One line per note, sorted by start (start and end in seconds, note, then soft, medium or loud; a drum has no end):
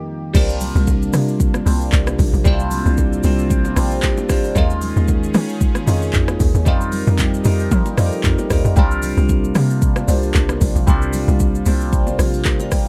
0.00 0.33 F2 medium
0.00 0.33 D#3 medium
0.00 0.29 G3 medium
0.00 0.32 A#3 medium
0.00 0.30 C4 medium
0.00 0.31 D#4 medium
0.00 0.32 F4 medium
0.00 0.32 G4 medium
0.00 0.32 A#4 medium
0.00 0.36 D#5 medium
0.00 0.31 G5 medium
0.34 0.72 C2 loud
0.34 4.52 C3 medium
0.34 1.19 G3 loud
0.34 4.52 A#3 medium
0.34 1.19 C4 loud
0.34 2.43 D4 medium
0.34 1.20 D4 loud
0.34 6.62 F4 medium
0.34 1.20 F4 loud
0.34 1.20 A#4 loud
0.34 kick loud
0.34 crash loud
0.34 low conga medium
0.34 shaker medium
0.49 shaker medium
0.61 open hi-hat medium
0.61 low conga medium
0.61 shaker loud
0.75 1.10 C2 loud
0.75 shaker medium
0.87 kick medium
0.87 high bongo medium
0.87 shaker medium
1.03 shaker medium
1.13 1.62 C3 loud
1.13 cross-stick medium
1.13 open hi-hat medium
1.13 low bongo medium
1.13 shaker loud
1.28 shaker medium
1.39 kick loud
1.39 low conga medium
1.39 shaker medium
1.54 cross-stick medium
1.54 low bongo medium
1.54 shaker medium
1.65 1.90 C2 loud
1.65 2.30 G3 medium
1.65 2.30 C4 medium
1.65 2.31 D4 medium
1.65 2.31 F4 medium
1.65 2.31 C5 loud
1.65 open hi-hat medium
1.65 low bongo medium
1.65 shaker loud
1.81 shaker medium
1.92 2.17 C2 medium
1.92 kick medium
1.92 clap medium
1.92 high bongo medium
1.92 shaker medium
2.07 cross-stick loud
2.07 low bongo medium
2.07 shaker medium
2.19 2.32 A#1 medium
2.19 kick loud
2.19 open hi-hat medium
2.19 high bongo medium
2.19 shaker loud
2.33 2.44 A#1 medium
2.33 high bongo soft
2.33 shaker medium
2.44 2.82 C2 loud
2.44 3.09 G3 loud
2.44 4.53 C4 medium
2.44 3.09 C4 loud
2.44 3.10 D4 loud
2.44 2.53 E4 medium
2.44 3.10 C5 loud
2.44 kick loud
2.44 low conga medium
2.44 shaker medium
2.53 3.13 F4 loud
2.60 shaker medium
2.71 open hi-hat medium
2.71 low conga medium
2.71 shaker loud
2.86 3.21 C2 loud
2.86 shaker medium
2.98 kick medium
2.98 high bongo medium
2.98 shaker medium
3.13 shaker medium
3.23 3.73 C2 loud
3.23 3.67 G3 medium
3.23 3.67 C4 medium
3.23 3.68 D4 medium
3.23 3.68 F4 medium
3.23 3.68 C5 medium
3.23 3.49 F5 medium
3.23 open hi-hat medium
3.23 low bongo medium
3.23 shaker loud
3.39 shaker medium
3.50 4.00 G5 medium
3.50 kick loud
3.50 low conga medium
3.50 shaker medium
3.65 low bongo medium
3.65 shaker medium
3.76 4.01 A#1 loud
3.76 4.19 G3 loud
3.76 4.20 C4 medium
3.76 4.20 D4 medium
3.76 4.21 F4 medium
3.76 4.21 G4 loud
3.76 cross-stick loud
3.76 open hi-hat medium
3.76 low bongo medium
3.76 shaker loud
3.91 shaker medium
4.03 4.28 G5 medium
4.03 kick loud
4.03 clap medium
4.03 high bongo medium
4.03 shaker medium
4.18 low bongo medium
4.18 shaker medium
4.29 4.51 G3 medium
4.29 4.51 C4 medium
4.29 4.51 D4 medium
4.29 4.52 F4 medium
4.29 4.52 C5 loud
4.29 4.54 A#5 medium
4.29 kick loud
4.29 cross-stick loud
4.29 open hi-hat medium
4.29 high bongo medium
4.29 shaker loud
4.44 high bongo medium
4.44 shaker medium
4.55 4.93 D#2 loud
4.55 6.64 D#3 medium
4.55 5.40 G#3 loud
4.55 5.40 C#4 loud
4.55 6.64 C#4 medium
4.55 5.41 D#4 loud
4.55 5.41 F4 loud
4.55 6.64 G#4 medium
4.55 5.42 A#4 loud
4.55 kick loud
4.55 low conga medium
4.55 shaker medium
4.70 shaker medium
4.82 open hi-hat medium
4.82 low conga medium
4.82 shaker loud
4.96 5.31 D#2 medium
4.96 shaker medium
5.08 kick medium
5.08 high bongo medium
5.08 shaker medium
5.23 shaker medium
5.34 5.83 D#3 loud
5.34 cross-stick medium
5.34 open hi-hat medium
5.34 low bongo medium
5.34 shaker loud
5.49 shaker medium
5.61 kick loud
5.61 low conga medium
5.61 shaker medium
5.75 cross-stick medium
5.75 low bongo medium
5.75 shaker medium
5.86 6.11 F2 loud
5.86 6.51 G#3 medium
5.86 6.52 C#4 medium
5.86 6.52 D#4 medium
5.86 6.52 F4 medium
5.86 6.53 C#5 loud
5.86 open hi-hat medium
5.86 low bongo medium
5.86 shaker loud
6.02 shaker soft
6.13 6.38 F2 medium
6.13 kick medium
6.13 clap medium
6.13 high bongo medium
6.13 shaker medium
6.28 cross-stick loud
6.28 low bongo medium
6.28 shaker medium
6.40 6.53 D#2 medium
6.40 kick loud
6.40 open hi-hat medium
6.40 high bongo medium
6.40 shaker loud
6.54 6.68 D#2 loud
6.54 high bongo soft
6.54 shaker medium
6.65 7.03 F2 loud
6.65 8.75 F3 medium
6.65 7.30 G3 loud
6.65 7.30 C4 loud
6.65 8.75 D#4 medium
6.65 7.31 D#4 loud
6.65 7.31 F4 loud
6.65 8.75 G4 medium
6.65 8.75 A#4 medium
6.65 7.31 A#4 loud
6.65 kick loud
6.65 low conga medium
6.65 shaker medium
6.81 shaker medium
6.92 open hi-hat medium
6.92 low conga medium
6.92 shaker loud
7.07 7.42 F2 loud
7.07 shaker medium
7.18 kick medium
7.18 clap loud
7.18 high bongo medium
7.18 shaker medium
7.34 shaker medium
7.44 7.69 F2 loud
7.44 7.88 G3 medium
7.44 7.88 C4 medium
7.44 7.89 D#4 medium
7.44 7.89 F4 medium
7.44 7.89 A#4 medium
7.44 open hi-hat medium
7.44 low bongo medium
7.44 shaker loud
7.60 shaker medium
7.71 7.85 F3 loud
7.71 kick loud
7.71 low conga medium
7.71 shaker medium
7.86 low bongo medium
7.86 shaker medium
7.97 8.11 F2 loud
7.97 8.41 G3 medium
7.97 8.41 C4 medium
7.97 8.41 D#4 medium
7.97 8.42 F4 medium
7.97 8.06 A4 medium
7.97 cross-stick loud
7.97 open hi-hat medium
7.97 low bongo medium
7.97 shaker loud
8.06 8.45 A#4 loud
8.12 shaker soft
8.24 8.37 F2 medium
8.24 kick medium
8.24 clap medium
8.24 high bongo medium
8.24 shaker medium
8.39 low bongo medium
8.39 shaker medium
8.50 8.64 D#2 medium
8.50 8.72 G3 medium
8.50 8.72 C4 medium
8.50 8.72 D#4 medium
8.50 8.73 F4 medium
8.50 8.73 A#4 loud
8.50 kick loud
8.50 cross-stick loud
8.50 open hi-hat medium
8.50 high bongo medium
8.50 shaker loud
8.65 8.76 F2 medium
8.65 high bongo medium
8.65 shaker medium
8.76 9.14 C2 loud
8.76 12.88 C3 medium
8.76 9.61 G3 loud
8.76 12.88 A#3 medium
8.76 9.61 C4 loud
8.76 10.85 D4 medium
8.76 9.62 D4 loud
8.76 12.88 F4 medium
8.76 9.62 F4 loud
8.76 9.62 A#4 loud
8.76 kick loud
8.76 low conga medium
8.76 shaker medium
8.91 shaker medium
9.02 open hi-hat medium
9.02 low conga medium
9.02 shaker loud
9.17 9.52 C2 loud
9.17 shaker medium
9.29 kick medium
9.29 high bongo medium
9.29 shaker medium
9.44 shaker medium
9.55 10.04 C3 loud
9.55 cross-stick medium
9.55 open hi-hat medium
9.55 low bongo medium
9.55 shaker loud
9.70 shaker medium
9.81 kick loud
9.81 low conga medium
9.81 shaker medium
9.96 cross-stick loud
9.96 low bongo medium
9.96 shaker medium
10.07 10.32 C2 loud
10.07 10.72 G3 medium
10.07 10.72 C4 medium
10.07 10.73 D4 medium
10.07 10.73 F4 medium
10.07 10.74 C5 loud
10.07 open hi-hat medium
10.07 low bongo medium
10.07 shaker loud
10.23 shaker medium
10.34 10.59 C2 medium
10.34 kick medium
10.34 clap loud
10.34 high bongo medium
10.34 shaker medium
10.49 cross-stick loud
10.49 low bongo medium
10.49 shaker medium
10.61 10.74 A#1 medium
10.61 kick loud
10.61 open hi-hat medium
10.61 high bongo medium
10.61 shaker loud
10.75 10.86 A#1 medium
10.75 high bongo soft
10.75 shaker medium
10.86 11.24 C2 loud
10.86 11.51 G3 loud
10.86 12.88 C4 medium
10.86 11.52 C4 loud
10.86 11.52 D4 loud
10.86 11.52 F4 loud
10.86 11.53 G4 loud
10.86 kick loud
10.86 low conga medium
10.86 shaker medium
11.02 shaker medium
11.13 open hi-hat medium
11.13 low conga medium
11.13 shaker loud
11.28 11.63 C2 loud
11.28 shaker medium
11.40 kick medium
11.40 high bongo medium
11.40 shaker medium
11.55 shaker medium
11.65 12.15 C2 loud
11.65 12.09 G3 medium
11.65 12.09 C4 medium
11.65 12.10 D4 medium
11.65 12.10 F4 medium
11.65 12.10 C5 medium
11.65 open hi-hat medium
11.65 low bongo medium
11.65 shaker loud
11.81 shaker medium
11.92 kick loud
11.92 low conga medium
11.92 shaker medium
12.07 low bongo medium
12.07 shaker medium
12.19 12.43 A#1 loud
12.19 cross-stick loud
12.19 open hi-hat medium
12.19 low bongo medium
12.19 shaker loud
12.34 12.45 F5 medium
12.34 shaker medium
12.45 12.60 A#4 medium
12.45 12.59 G5 medium
12.45 kick medium
12.45 clap medium
12.45 high bongo medium
12.45 shaker medium
12.60 12.71 D5 medium
12.60 12.71 A#5 medium
12.60 low bongo medium
12.60 shaker medium
12.71 12.86 A#4 medium
12.71 12.86 G5 medium
12.71 kick loud
12.71 cross-stick loud
12.71 open hi-hat medium
12.71 high bongo medium
12.71 shaker loud